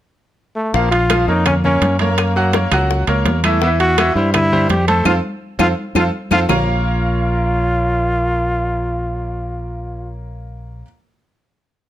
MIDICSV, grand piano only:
0, 0, Header, 1, 2, 480
1, 0, Start_track
1, 0, Key_signature, -5, "minor"
1, 0, Tempo, 358852
1, 995, Time_signature, 4, 2, 24, 8
1, 15908, End_track
2, 0, Start_track
2, 0, Title_t, "Grand piano"
2, 0, Program_c, 0, 0
2, 993, Note_on_c, 0, 53, 74
2, 1002, Note_on_c, 0, 65, 83
2, 1007, Note_on_c, 0, 77, 78
2, 1387, Note_off_c, 0, 53, 0
2, 1393, Note_off_c, 0, 65, 0
2, 1396, Note_off_c, 0, 77, 0
2, 1482, Note_on_c, 0, 53, 81
2, 1484, Note_on_c, 0, 65, 78
2, 1488, Note_on_c, 0, 77, 78
2, 1676, Note_off_c, 0, 53, 0
2, 1677, Note_off_c, 0, 65, 0
2, 1680, Note_off_c, 0, 77, 0
2, 1718, Note_on_c, 0, 58, 69
2, 1724, Note_on_c, 0, 70, 71
2, 1727, Note_on_c, 0, 73, 65
2, 2110, Note_off_c, 0, 58, 0
2, 2114, Note_off_c, 0, 70, 0
2, 2116, Note_off_c, 0, 73, 0
2, 2203, Note_on_c, 0, 58, 70
2, 2209, Note_on_c, 0, 70, 71
2, 2214, Note_on_c, 0, 73, 73
2, 2593, Note_off_c, 0, 58, 0
2, 2597, Note_off_c, 0, 70, 0
2, 2600, Note_off_c, 0, 73, 0
2, 2683, Note_on_c, 0, 58, 73
2, 2689, Note_on_c, 0, 70, 72
2, 2695, Note_on_c, 0, 73, 78
2, 3074, Note_off_c, 0, 58, 0
2, 3077, Note_off_c, 0, 70, 0
2, 3081, Note_off_c, 0, 73, 0
2, 3159, Note_on_c, 0, 54, 85
2, 3167, Note_on_c, 0, 66, 79
2, 3167, Note_on_c, 0, 78, 83
2, 3355, Note_off_c, 0, 54, 0
2, 3360, Note_off_c, 0, 66, 0
2, 3360, Note_off_c, 0, 78, 0
2, 3406, Note_on_c, 0, 58, 72
2, 3409, Note_on_c, 0, 70, 74
2, 3413, Note_on_c, 0, 73, 72
2, 3599, Note_off_c, 0, 58, 0
2, 3601, Note_off_c, 0, 70, 0
2, 3603, Note_off_c, 0, 73, 0
2, 3644, Note_on_c, 0, 54, 80
2, 3650, Note_on_c, 0, 66, 81
2, 3655, Note_on_c, 0, 78, 84
2, 4036, Note_off_c, 0, 54, 0
2, 4039, Note_off_c, 0, 66, 0
2, 4042, Note_off_c, 0, 78, 0
2, 4123, Note_on_c, 0, 58, 72
2, 4126, Note_on_c, 0, 70, 73
2, 4130, Note_on_c, 0, 73, 70
2, 4515, Note_off_c, 0, 58, 0
2, 4517, Note_off_c, 0, 70, 0
2, 4519, Note_off_c, 0, 73, 0
2, 4609, Note_on_c, 0, 52, 80
2, 4612, Note_on_c, 0, 64, 83
2, 4618, Note_on_c, 0, 76, 83
2, 4802, Note_off_c, 0, 52, 0
2, 4804, Note_off_c, 0, 64, 0
2, 4807, Note_off_c, 0, 76, 0
2, 4851, Note_on_c, 0, 52, 81
2, 4857, Note_on_c, 0, 64, 78
2, 4864, Note_on_c, 0, 76, 78
2, 5240, Note_off_c, 0, 52, 0
2, 5244, Note_off_c, 0, 64, 0
2, 5248, Note_off_c, 0, 76, 0
2, 5331, Note_on_c, 0, 52, 85
2, 5331, Note_on_c, 0, 64, 83
2, 5337, Note_on_c, 0, 76, 79
2, 5523, Note_off_c, 0, 52, 0
2, 5523, Note_off_c, 0, 64, 0
2, 5527, Note_off_c, 0, 76, 0
2, 5575, Note_on_c, 0, 55, 72
2, 5576, Note_on_c, 0, 67, 70
2, 5577, Note_on_c, 0, 72, 69
2, 5963, Note_off_c, 0, 55, 0
2, 5964, Note_off_c, 0, 67, 0
2, 5964, Note_off_c, 0, 72, 0
2, 6050, Note_on_c, 0, 55, 76
2, 6054, Note_on_c, 0, 67, 76
2, 6058, Note_on_c, 0, 72, 79
2, 6441, Note_off_c, 0, 55, 0
2, 6443, Note_off_c, 0, 67, 0
2, 6445, Note_off_c, 0, 72, 0
2, 6524, Note_on_c, 0, 57, 75
2, 6528, Note_on_c, 0, 69, 77
2, 6530, Note_on_c, 0, 72, 79
2, 6720, Note_off_c, 0, 57, 0
2, 6723, Note_off_c, 0, 69, 0
2, 6724, Note_off_c, 0, 72, 0
2, 6759, Note_on_c, 0, 60, 94
2, 6761, Note_on_c, 0, 69, 92
2, 6762, Note_on_c, 0, 65, 92
2, 6914, Note_off_c, 0, 60, 0
2, 6915, Note_off_c, 0, 69, 0
2, 6916, Note_off_c, 0, 65, 0
2, 7475, Note_on_c, 0, 60, 95
2, 7475, Note_on_c, 0, 69, 85
2, 7477, Note_on_c, 0, 65, 88
2, 7632, Note_off_c, 0, 60, 0
2, 7632, Note_off_c, 0, 69, 0
2, 7633, Note_off_c, 0, 65, 0
2, 7971, Note_on_c, 0, 69, 90
2, 7972, Note_on_c, 0, 65, 99
2, 7976, Note_on_c, 0, 60, 84
2, 8122, Note_off_c, 0, 69, 0
2, 8123, Note_off_c, 0, 65, 0
2, 8125, Note_off_c, 0, 60, 0
2, 8452, Note_on_c, 0, 69, 90
2, 8453, Note_on_c, 0, 65, 96
2, 8455, Note_on_c, 0, 60, 92
2, 8603, Note_off_c, 0, 69, 0
2, 8604, Note_off_c, 0, 65, 0
2, 8605, Note_off_c, 0, 60, 0
2, 8680, Note_on_c, 0, 58, 87
2, 8682, Note_on_c, 0, 65, 77
2, 8686, Note_on_c, 0, 73, 82
2, 8689, Note_on_c, 0, 70, 74
2, 8692, Note_on_c, 0, 77, 83
2, 8693, Note_on_c, 0, 82, 99
2, 14472, Note_off_c, 0, 58, 0
2, 14473, Note_off_c, 0, 65, 0
2, 14475, Note_off_c, 0, 73, 0
2, 14477, Note_off_c, 0, 70, 0
2, 14478, Note_off_c, 0, 77, 0
2, 14478, Note_off_c, 0, 82, 0
2, 15908, End_track
0, 0, End_of_file